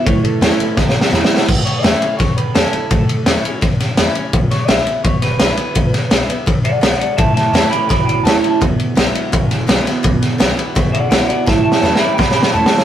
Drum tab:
CC |------------------------|x-----------------------|------------------------|------------------------|
RD |x--x--x--x--------------|---x--x--x--x--x--x--x--|x--x--x--x--x--x--x--x--|x--x--x--x--x--x--x--x--|
SD |------o-----o-o-o-o-o-o-|------o-----o-----o-----|------o-----o--o--o-----|---o--o--------o--o-----|
BD |o-----------o-----------|o-----------o-----------|o-----------o-----------|o-----------o-----------|

CC |------------------------|------------------------|------------------------|------------------------|
RD |x--x--x--x--x--x--x--x--|x--x--x--x--x--x--x--x--|x--x--x--x--x--x--x--x--|x--x--x--x--x--x--x--x--|
SD |---o--o-----------o-----|---o--o-----o-----o-----|------o--------o--o--o--|---o--o-----o-----o-----|
BD |o-----------o-----------|o-----------o-----------|o-----------o-----------|o-----------o-----------|

CC |------------------------|
RD |------------------------|
SD |o---o-o-o---o-o-o---o-o-|
BD |o-----------o-----------|